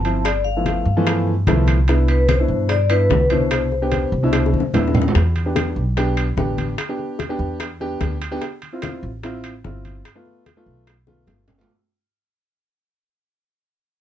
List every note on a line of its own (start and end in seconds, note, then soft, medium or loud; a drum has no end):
0.00 0.80 G1 loud
0.00 0.27 A5 loud
0.05 0.25 F3 medium
0.05 0.25 C4 medium
0.05 0.26 E4 medium
0.05 high timbale medium
0.25 0.46 D5 medium
0.25 high bongo medium
0.25 high conga soft
0.25 high timbale loud
0.25 claves medium
0.45 1.23 F5 medium
0.45 high bongo soft
0.45 high conga soft
0.56 0.85 F3 medium
0.56 0.85 A3 medium
0.56 0.85 B3 medium
0.56 0.85 E4 medium
0.66 high bongo medium
0.66 high conga medium
0.66 high timbale medium
0.85 1.43 G2 medium
0.85 high conga soft
0.97 1.32 E3 loud
0.97 1.32 F3 medium
0.97 1.32 A3 medium
0.97 1.32 B3 medium
1.06 high bongo medium
1.06 high conga soft
1.06 high timbale medium
1.06 claves medium
1.27 high bongo soft
1.27 high conga soft
1.47 2.43 C2 loud
1.47 1.76 F3 medium
1.47 1.76 A3 medium
1.47 1.76 B3 medium
1.47 1.76 E4 loud
1.47 high bongo medium
1.47 low bongo medium
1.47 high conga medium
1.47 high timbale medium
1.67 high bongo soft
1.67 high conga medium
1.67 high timbale medium
1.67 claves medium
1.88 2.24 B3 medium
1.88 2.24 D4 medium
1.88 2.24 E4 medium
1.88 high bongo medium
1.88 high conga soft
1.88 high timbale medium
2.08 2.30 B4 loud
2.08 high conga soft
2.08 high timbale medium
2.29 2.67 C5 medium
2.29 high bongo medium
2.29 high conga medium
2.29 high timbale medium
2.29 claves medium
2.40 2.75 B2 medium
2.40 2.75 D4 medium
2.40 2.75 E4 medium
2.48 3.06 G2 medium
2.69 2.90 D5 medium
2.69 high bongo medium
2.69 high conga soft
2.69 high timbale medium
2.90 3.19 B3 medium
2.90 3.19 D4 medium
2.90 3.19 E4 medium
2.90 3.32 B4 medium
2.90 high conga soft
2.90 high timbale medium
2.90 claves medium
3.10 4.06 C2 medium
3.10 high bongo medium
3.10 low bongo medium
3.10 high conga medium
3.10 low timbale medium
3.30 3.67 B2 medium
3.30 3.67 D4 medium
3.30 3.67 E4 medium
3.30 4.69 C5 loud
3.30 high conga medium
3.30 high timbale medium
3.51 high bongo medium
3.51 high conga soft
3.51 high timbale medium
3.51 claves medium
3.72 high bongo soft
3.72 high conga soft
3.82 4.11 B3 medium
3.82 4.11 D4 medium
3.82 4.11 G4 medium
3.92 high bongo medium
3.92 high conga medium
3.92 high timbale medium
4.12 4.50 C2 medium
4.12 high conga soft
4.23 4.59 B2 medium
4.23 4.59 D4 medium
4.23 4.59 E4 loud
4.33 high bongo loud
4.33 high conga soft
4.33 high timbale medium
4.33 claves medium
4.46 high bongo medium
4.53 4.72 D2 medium
4.53 high conga medium
4.60 low bongo medium
4.74 5.10 E2 medium
4.74 5.03 B3 medium
4.74 5.03 D4 medium
4.74 5.03 E4 loud
4.74 low bongo medium
4.74 low conga medium
4.74 high timbale medium
4.74 low timbale medium
4.88 low bongo medium
4.95 low conga loud
4.95 high timbale medium
4.95 claves medium
5.01 low bongo medium
5.08 low timbale medium
5.15 5.72 E2 loud
5.15 high bongo medium
5.15 high conga soft
5.15 high timbale medium
5.36 high conga soft
5.36 high timbale medium
5.46 5.81 B3 medium
5.46 5.81 D4 medium
5.46 5.82 G4 medium
5.56 high bongo medium
5.56 high conga medium
5.56 high timbale medium
5.56 claves medium
5.76 6.33 B1 medium
5.97 6.25 B3 medium
5.97 6.25 D4 medium
5.97 6.25 G4 loud
5.97 high bongo medium
5.97 high conga soft
5.97 high timbale medium
6.17 high conga soft
6.17 high timbale medium
6.17 claves medium
6.37 6.73 A1 medium
6.37 6.73 B3 medium
6.37 6.73 D4 medium
6.37 6.73 G4 loud
6.37 high bongo medium
6.37 low bongo medium
6.37 high conga medium
6.58 high conga medium
6.58 high timbale medium
6.78 high bongo medium
6.78 high conga soft
6.78 high timbale loud
6.78 claves medium
6.89 7.17 B3 medium
6.89 7.17 D4 medium
6.89 7.17 G4 medium
6.98 high bongo soft
6.98 high conga soft
7.19 high bongo medium
7.19 high conga medium
7.19 high timbale medium
7.29 7.65 B3 medium
7.29 7.65 D4 medium
7.29 7.65 G4 loud
7.39 7.96 E2 medium
7.39 high conga soft
7.60 high bongo medium
7.60 high conga soft
7.60 high timbale medium
7.60 claves medium
7.80 8.16 B3 medium
7.80 8.16 D4 medium
7.80 8.16 G4 loud
7.80 high bongo soft
7.80 high conga soft
8.01 8.37 D2 medium
8.01 high bongo medium
8.01 low bongo medium
8.01 high conga medium
8.01 high timbale medium
8.21 high bongo soft
8.21 high timbale medium
8.21 claves medium
8.31 8.42 B3 loud
8.31 8.42 D4 medium
8.31 8.42 G4 loud
8.42 high bongo medium
8.42 high conga soft
8.42 high timbale medium
8.62 high conga soft
8.62 high timbale medium
8.73 9.08 C4 medium
8.73 9.08 E4 medium
8.73 9.09 F4 medium
8.82 high bongo medium
8.82 high conga medium
8.82 high timbale medium
8.82 claves medium
9.03 9.60 A1 medium
9.23 9.52 C4 medium
9.23 9.52 E4 loud
9.23 9.52 F4 loud
9.23 high bongo medium
9.23 high conga soft
9.23 high timbale medium
9.44 high conga soft
9.44 high timbale medium
9.44 claves medium
9.64 10.01 G1 medium
9.64 10.00 C4 medium
9.64 10.00 E4 medium
9.64 10.00 F4 loud
9.64 high bongo medium
9.64 low bongo medium
9.64 high conga medium
9.85 high conga medium
9.85 high timbale medium
10.05 high bongo medium
10.05 high conga soft
10.05 high timbale medium
10.05 claves medium
10.15 10.44 A3 medium
10.15 10.44 B3 medium
10.15 10.44 F4 medium
10.25 high bongo soft
10.25 high conga soft
10.46 high bongo medium
10.46 high conga medium
10.46 high timbale medium
10.57 10.92 A3 medium
10.57 10.92 B3 medium
10.57 10.92 F4 medium
10.66 11.24 B1 medium
10.66 high conga soft
10.87 high bongo medium
10.87 high conga soft
10.87 high timbale medium
10.87 claves medium
11.07 11.43 A3 medium
11.07 11.43 B3 medium
11.07 11.44 F4 loud
11.07 high bongo medium
11.07 high conga medium
11.27 11.63 G1 medium
11.27 high bongo medium
11.27 low conga loud
11.27 high timbale medium
11.48 low bongo loud
11.48 low conga medium
11.48 high timbale medium
11.48 claves medium
11.58 11.69 A3 loud
11.58 11.69 B3 loud
11.58 11.69 F4 loud
11.58 low timbale medium